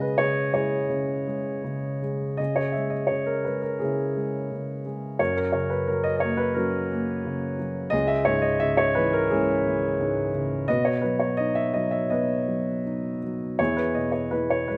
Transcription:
Already playing: C#3 G#3 G#4 D#5
0.01 B4
0.18 C#3 C#5
0.54 G#3 E4 G#4 C#5
0.90 C#3
1.27 G#3
1.64 C#3
2.02 G#3
2.37 C#3 G#4 D#5
2.56 C#5
2.72 E5
2.76 G#3
2.90 D#5
3.07 C#5
3.11 C#3
3.26 A#4
3.44 G#3 B4
3.62 A#4
3.79 C#3 C#4 E4 G#4
4.17 G#3
4.52 C#3
4.86 G#3
5.19 F#2 F#4 A#4 C#5
5.37 A#4
5.53 C#3 C#5
5.70 B4
5.88 F#3 A#4
6.04 D#5
6.16 C#5 D#5
6.23 A#3
6.37 B4
6.55 F#3 C#4 F#4 A#4
6.91 A#3
7.25 C#3
7.59 F#3
7.90 C#2 G#4 D#5
8.07 E5
8.25 G#2 C#5
8.42 D#5
8.60 C#3 E5
8.77 C#5
8.95 E3 B4
9.13 A#4
9.29 G#3 C#4 E4 G#4
9.66 E3
10.01 G#2
10.35 C#3
10.68 B2 F#4 B4 D#5
10.85 C#5
11.01 F#3 B4
11.20 C#5
11.37 D#4 D#5
11.55 E5
11.74 F#3 D#5
11.91 E5
12.10 B2 F#4 B4 D#5
12.48 F#3
12.86 D#4
13.24 F#3
13.59 E2 E4 G#4 C#5
13.77 B4
13.95 B2 D#5
14.12 C#5
14.31 E3 B4
14.50 C#5
14.68 G#3 B4

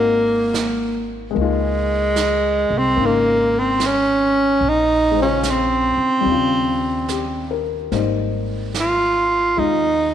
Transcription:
Already playing: G#1 A#3 C4 D#4 F#4
0.54 snare, hi-hat pedal
1.31 G#3 A#3
1.35 C#2 D#4, brush sweep
1.40 G#3 F4
2.16 snare, hi-hat pedal
2.70 C2
2.78 C4
2.96 G#1 C#3 A#3 D#4, brush sweep
3.06 A#3
3.59 C4
3.80 snare, hi-hat pedal
3.86 C#4
4.61 A#1, brush sweep
4.69 D#4
5.11 G#3
5.16 C#3 C5
5.22 C#4 F4
5.43 snare, hi-hat pedal
5.51 C4
5.97 muted upright bass stroke
6.21 G3 C4
6.25 D#2 C#3, brush sweep
6.31 F4
7.08 G4, snare, hi-hat pedal
7.51 A#4
7.92 G#1 G3 A#3 D#4 C5, brush sweep, snare
8.74 snare, hi-hat pedal
8.80 F4
9.57 D#2 G#3 D#4 F4, brush sweep

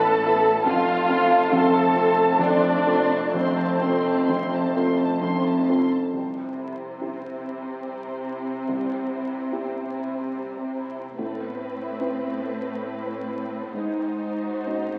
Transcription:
Already playing: A1 A2 B2 A3 B3 E4 A4 A5
0.05 A5
0.24 B3 E4 A4 B5
0.45 A5
0.66 F1 F2 A3 C4 F4 F5 C6
0.88 A5
1.09 C4 F4 A4 C6
1.30 A5
1.52 F1 F2 A4 A5 C6
1.75 A5
1.95 C4 F4 A4 C6
2.20 A5
2.39 F1 F2 D4 D5
2.43 D5 C6
2.65 A5
2.87 C4 F4 A4 C6
3.12 A5
3.34 F1 F2 C4 C5 C6
3.57 A5
3.81 C4 F4 A4 C6
4.07 A5
4.27 F1 F2 C6
4.52 A5
4.76 C4 F4 A4 C6
4.98 A5
5.21 F1 F2 C6
5.46 A5
5.68 C4 F4 A4 C6
5.91 A5
6.13 C2 C3 G3 C4 C5
6.37 C4
6.58 E4
6.79 C4
7.01 G3 C4 E4 G4
7.22 C4
7.44 E4
7.64 C4
7.84 G3
8.07 C4
8.27 E4
8.49 C4
8.69 C2 G3
8.91 C4
9.12 E4
9.33 C4
9.52 G3 C4 E4 G4
9.73 C4
9.94 E4
10.15 C4
10.37 G3
10.58 C4
10.77 E4
10.99 C4
11.18 A2 A3 C4 B4
11.40 B3
11.62 C4
11.81 E4
12.00 C4 E4 B4
12.22 B3
12.43 A3
12.65 B3
12.86 C4
13.08 E4
13.30 C4
13.51 B3
13.74 G#2 G#3 D#4 C5
13.98 C4
14.20 D#4
14.42 F#4
14.65 D#4 F#4 C5
14.89 C4

